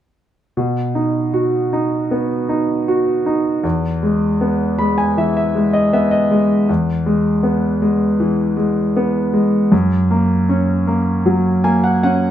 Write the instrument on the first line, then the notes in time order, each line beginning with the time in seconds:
grand piano
0.57 B2
0.95 D#4
1.34 F#4
1.73 D#4
2.11 B3
2.49 D#4
2.88 F#4
3.26 D#4
3.63 E2
4.03 G#3
4.41 B3
4.79 G#3 B5
4.98 G#5
5.17 E3 E5
5.37 E5
5.55 G#3
5.73 D#5
5.93 B3 E5
6.11 D#5
6.31 G#3
6.69 E2
7.06 G#3
7.43 B3
7.82 G#3
8.20 E3
8.57 G#3
8.97 B3
9.33 G#3
9.72 F#2
10.11 A#3
10.49 C#4
10.87 A#3
11.26 F#3
11.64 A#3 G#5
11.84 F#5
12.03 C#4 F#5